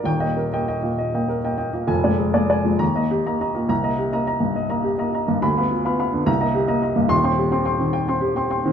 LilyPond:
<<
  \new Staff \with { instrumentName = "Upright piano" } { \time 6/8 \key ees \major \tempo 4. = 69 << { g''8 r2 r8 | aes''8 r4 bes''8 r4 | bes''8 r2 r8 | b''8 r4 bes''8 r4 |
\key c \dorian c'''8 r2 r8 | } \\ { r16 <ees'' g''>16 bes'16 <ees'' g''>16 <ees'' g''>16 bes,16 ees''16 <ees'' g''>16 bes'16 <ees'' g''>16 <ees'' g''>16 bes,16 | r16 <d'' aes''>16 aes'16 <d'' aes''>16 <d'' aes''>16 f16 r16 <ees'' bes''>16 g'16 <ees'' bes''>16 <ees'' bes''>16 bes,16 | r16 <ees'' bes''>16 g'16 <ees'' bes''>16 <ees'' bes''>16 g,16 ees''16 <ees'' bes''>16 g'16 <ees'' bes''>16 <ees'' bes''>16 g,16 | r16 <f'' b''>16 f'16 <f'' b''>16 <f'' b''>16 d16 r16 <ees'' bes''>16 g'16 <ees'' bes''>16 <ees'' bes''>16 g,16 |
r16 <g'' c'''>16 g'16 <g'' c'''>16 <g'' c'''>16 ees16 g''16 <g'' c'''>16 g'16 <g'' c'''>16 <g'' c'''>16 ees16 | } >> }
  \new Staff \with { instrumentName = "Upright piano" } { \time 6/8 \key ees \major <ees,, ees,>16 bes8 bes8 bes8 bes8 bes8 bes16 | <f,, f,>16 aes8 aes8 aes16 ees,16 bes8 bes8 bes16 | c,16 bes8 bes8 bes8 bes8 bes8 bes16 | d,16 b8 b8 b16 c,16 bes8 bes8 bes16 |
\key c \dorian <ees,, ees,>16 c'8 c'8 c'8 c'8 c'8 c'16 | }
>>